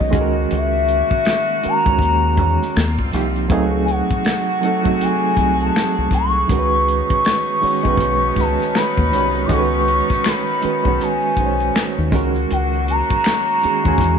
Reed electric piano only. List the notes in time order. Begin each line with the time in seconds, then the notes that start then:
Already playing: D#3 G#3 C#4 F#4 G#4 C#5
0.10 D#3 G#3 C#4 F#4
0.15 G#4
0.21 A#4
1.61 D#3 G#3 C#4 F#4 A#4
1.84 D#3 G#3 C#4 F#4
1.88 C#5
2.37 D#3 G#3 C#4 F#4
2.41 C#5
3.11 C3 F3 A#3 D#4
3.15 G4
3.49 F#3 A3 C4 D#4 G#4
4.61 F#3 A3 C4 D#4
4.65 A4
4.83 F#3 A3 C4 D#4 F#4
5.36 F#3 A3 C4 D#4
5.40 G#4
6.48 D#3 G#3 C#4 F#4
6.52 A#4
6.59 B4
7.61 D#3 G#3 C#4 F#4 C#5
7.83 D#3 G#3 C#4 F#4 B4
8.36 D#3 G#3 C#4 F#4
8.40 B4
9.10 D#3 G#3 C#4 F#4
9.15 C#5
9.48 D#3 G#3 C#4 F#4
9.52 A4
9.59 B4
10.61 D#3 G#3 C#4 F#4 B4
10.83 D#3 G#3 C#4 F#4
10.88 C#5
11.36 D#3 G#3 C#4 F#4
11.40 C5
11.46 C#5
12.11 D#3 G#3 C#4 F#4 A#4
13.62 D#3 G#3 C#4 F#4 G#4
13.84 D#3 G#3 C#4 F#4 G#4